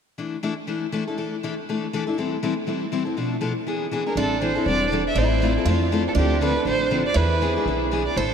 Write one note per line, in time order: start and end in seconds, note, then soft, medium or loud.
0.18 0.36 E3 medium
0.18 0.36 A3 medium
0.18 0.36 D4 medium
0.18 0.36 E4 medium
0.18 0.36 A4 medium
0.43 0.53 E3 medium
0.43 0.53 A3 medium
0.43 0.53 D4 medium
0.43 0.53 E4 medium
0.43 0.53 A4 medium
0.67 0.85 E3 medium
0.67 0.85 A3 medium
0.67 0.86 D4 medium
0.67 0.86 E4 medium
0.67 0.86 A4 medium
0.92 1.03 E3 medium
0.92 1.03 A3 medium
0.92 1.03 D4 medium
0.92 1.03 E4 medium
0.92 1.03 A4 medium
1.07 1.17 D4 soft
1.07 1.17 E4 soft
1.07 1.17 A4 soft
1.17 1.35 E3 medium
1.17 1.35 A3 medium
1.17 1.36 D4 medium
1.17 1.36 E4 medium
1.17 1.36 A4 medium
1.43 1.53 E3 medium
1.43 1.53 A3 medium
1.43 1.53 D4 medium
1.43 1.53 E4 medium
1.43 1.53 A4 medium
1.69 1.86 E3 medium
1.69 1.86 A3 medium
1.69 1.86 D4 medium
1.69 1.87 E4 medium
1.69 1.87 A4 medium
1.93 2.03 E3 medium
1.93 2.03 A3 medium
1.93 2.03 D4 medium
1.93 2.03 E4 medium
1.93 2.03 A4 medium
2.07 2.18 D4 soft
2.07 2.17 E4 soft
2.07 2.17 A4 medium
2.18 2.36 E3 medium
2.18 2.36 G3 medium
2.18 2.36 C4 medium
2.18 2.36 E4 medium
2.18 2.36 A4 medium
2.43 2.53 E3 medium
2.43 2.53 G3 medium
2.43 2.53 C4 medium
2.43 2.53 E4 medium
2.43 2.53 A4 medium
2.67 2.85 E3 medium
2.67 2.85 G3 medium
2.67 2.85 C4 medium
2.67 2.86 E4 medium
2.67 2.86 A4 medium
2.92 3.02 E3 medium
2.92 3.03 G3 medium
2.92 3.03 C4 medium
2.92 3.03 E4 medium
2.92 3.03 A4 medium
3.05 3.17 C4 soft
3.05 3.17 E4 soft
3.05 3.16 A4 soft
3.17 3.35 B2 medium
3.17 3.35 F3 medium
3.17 3.36 A3 medium
3.17 3.35 D4 medium
3.17 3.36 A4 medium
3.41 3.52 B2 medium
3.41 3.52 F3 medium
3.41 3.52 A3 medium
3.41 3.52 D4 medium
3.41 3.52 A4 medium
3.67 3.85 E3 medium
3.67 3.85 B3 medium
3.67 3.86 D4 medium
3.67 3.86 G#4 medium
3.91 4.02 E3 medium
3.91 4.02 B3 medium
3.91 4.03 D4 medium
3.91 4.03 G#4 medium
4.06 4.17 B3 soft
4.06 4.17 D4 soft
4.06 4.17 G#4 medium
4.06 4.17 A#4 medium
4.16 4.56 A1 medium
4.16 4.35 E3 medium
4.16 4.35 G3 medium
4.16 4.35 C4 medium
4.16 5.15 D4 medium
4.16 4.35 E4 medium
4.16 4.36 A4 medium
4.16 4.41 A4 medium
4.41 4.52 E3 medium
4.41 4.52 G3 medium
4.41 4.52 C4 medium
4.41 4.52 E4 medium
4.41 4.52 A4 medium
4.41 4.66 C5 medium
4.55 4.67 C4 soft
4.55 4.67 E4 soft
4.55 4.66 A4 medium
4.66 5.06 E1 medium
4.66 4.85 E3 medium
4.66 4.86 G3 medium
4.66 4.86 C4 medium
4.66 4.86 E4 medium
4.66 4.86 A4 medium
4.66 4.91 D5 medium
4.92 5.02 E3 medium
4.92 5.02 G3 medium
4.92 5.03 C4 medium
4.92 5.03 E4 medium
4.92 5.03 A4 medium
5.08 5.20 E5 medium
5.15 5.56 A1 medium
5.15 5.35 E3 medium
5.15 5.35 A3 medium
5.15 5.36 C4 medium
5.15 5.68 E4 medium
5.15 5.36 F4 medium
5.15 5.36 A4 medium
5.15 5.68 C5 medium
5.42 5.52 E3 medium
5.42 5.52 A3 medium
5.42 5.53 C4 medium
5.42 5.53 F4 medium
5.42 5.53 A4 medium
5.58 5.67 C4 soft
5.58 5.67 F4 soft
5.58 5.67 A4 medium
5.65 6.06 F2 medium
5.65 5.85 E3 medium
5.65 5.86 A3 medium
5.65 5.86 C4 medium
5.65 6.18 F4 medium
5.65 5.86 F4 medium
5.65 5.86 A4 medium
5.92 6.02 E3 medium
5.92 6.02 A3 medium
5.92 6.02 C4 medium
5.92 6.02 F4 medium
5.92 6.03 A4 medium
6.08 6.13 A4 medium
6.15 6.56 D2 medium
6.15 6.36 D3 medium
6.15 6.36 F3 medium
6.15 6.36 C4 medium
6.15 7.14 D4 medium
6.15 6.41 G4 medium
6.19 6.36 D4 medium
6.19 6.36 A4 medium
6.41 6.52 D3 medium
6.41 6.52 F3 medium
6.41 6.52 C4 medium
6.41 6.52 D4 medium
6.41 6.52 A4 medium
6.41 6.66 B4 medium
6.56 6.66 C4 soft
6.56 6.66 D4 soft
6.56 6.66 A4 medium
6.65 7.06 A1 medium
6.65 6.85 D3 medium
6.65 6.85 F3 medium
6.65 6.85 C4 medium
6.65 6.85 D4 medium
6.65 6.85 A4 medium
6.65 6.91 C5 medium
6.91 7.02 D3 medium
6.91 7.02 F3 medium
6.91 7.02 C4 medium
6.91 7.02 D4 medium
6.91 7.02 A4 medium
7.06 7.18 D5 medium
7.14 7.56 E2 medium
7.14 7.35 E3 medium
7.14 7.35 B3 medium
7.14 7.36 D4 medium
7.14 8.01 E4 medium
7.14 7.35 G#4 medium
7.14 7.66 B4 medium
7.42 7.52 E3 medium
7.42 7.52 B3 medium
7.42 7.52 D4 medium
7.42 7.52 G#4 medium
7.56 7.67 B3 soft
7.56 7.67 D4 soft
7.56 7.67 G#4 medium
7.66 8.06 B1 medium
7.66 7.85 E3 medium
7.66 7.85 B3 medium
7.66 7.85 D4 medium
7.66 7.86 G#4 medium
7.91 8.02 E3 medium
7.91 8.02 B3 medium
7.91 8.02 D4 medium
7.91 8.03 G#4 medium
8.06 8.18 D5 medium
8.16 8.34 A1 medium
8.16 8.34 E3 medium
8.16 8.34 G3 medium
8.16 8.34 C4 medium
8.16 8.34 E4 medium
8.16 8.34 A4 loud
8.16 8.34 A4 medium
8.16 8.34 C5 medium